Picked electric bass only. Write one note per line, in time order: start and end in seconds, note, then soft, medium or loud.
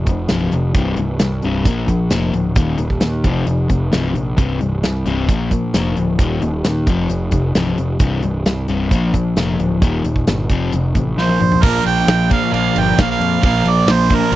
0.06 0.27 F1 medium
0.29 0.50 C1 medium
0.52 0.73 F1 medium
0.75 0.96 C1 medium
0.97 1.18 C1 medium
1.20 1.41 C2 medium
1.43 1.64 C1 medium
1.65 1.86 A#1 medium
1.88 2.09 A#1 medium
2.11 2.32 F1 medium
2.33 2.56 D1 medium
2.56 2.77 D#1 medium
2.78 2.99 D#1 medium
3.02 3.26 D#2 medium
3.24 3.45 F1 medium
3.46 3.68 F1 medium
3.70 3.91 F1 medium
3.93 4.13 C1 medium
4.15 4.36 A#1 medium
4.38 4.59 C1 medium
4.61 4.81 C1 medium
4.83 5.04 C2 medium
5.05 5.26 C1 medium
5.28 5.49 A#1 medium
5.51 5.72 A#1 medium
5.74 5.95 F1 medium
5.97 6.19 D1 medium
6.19 6.40 D#1 medium
6.42 6.63 D#1 medium
6.64 6.85 D#2 medium
6.87 7.08 F1 medium
7.09 7.30 F1 medium
7.31 7.53 F1 medium
7.55 7.76 C1 medium
7.77 7.99 F1 medium
8.00 8.21 C1 medium
8.23 8.44 C1 medium
8.46 8.67 C2 medium
8.68 8.89 C1 medium
8.91 9.12 A#1 medium
9.14 9.35 A#1 medium
9.36 9.57 F1 medium
9.59 9.82 D1 medium
9.82 10.03 D#1 medium
10.04 10.25 D#1 medium
10.27 10.48 G1 medium
10.50 10.71 F1 medium
10.72 10.93 F1 medium
10.95 11.16 A1 medium
11.18 11.39 A#1 medium
11.41 11.61 A#1 medium
11.63 11.80 A#1 medium
11.86 12.02 A#1 medium
12.08 12.41 A#1 medium
12.53 12.69 A#1 medium
12.76 12.92 G1 medium
12.99 13.15 A#1 loud
13.20 13.37 F2 medium
13.44 13.60 A#1 medium
13.65 13.81 A#1 medium
13.87 14.20 A#1 medium
14.32 14.36 A#1 medium